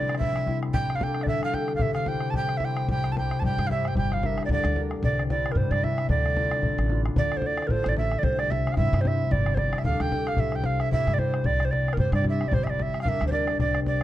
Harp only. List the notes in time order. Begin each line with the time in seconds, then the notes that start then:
Already playing: C3 G3 A3 C4 D4 E4
0.19 G3
0.47 G3 C4 E4
0.73 G3
0.99 D4 G4 A4
1.26 D3
1.53 D4 G4 A4
1.81 C3
2.07 E4 G4 C5
2.34 G3
2.62 E4 G4 C5
2.89 G3
3.15 E4 G4 C5
3.43 G3
3.69 E4 G4 C5
3.97 G3
4.23 D4 G4 A#4
4.51 D3
4.77 D4 G4 A#4
5.03 C3
5.29 C4 D4 E4
5.56 G3
5.83 C4 D4 E4
6.10 D3
6.36 D4 E4 F4
6.63 A3
6.90 D4 E4 F4
7.17 D3
7.71 A3 D4 F4
7.97 A3 D4 F4
8.23 C3
8.76 G3 C4 E4
9.03 G3 C4 E4
9.31 G3
9.85 D4 G4 A4
10.12 D4 G4 A4
10.38 C3
10.92 C4 E4 G4
11.18 C4 E4 G4
11.46 G3
11.98 C4 E4 G4
12.24 C4 E4 G4
12.52 G3
13.05 D4 G4 A#4
13.32 D4 G4 A#4
13.59 C3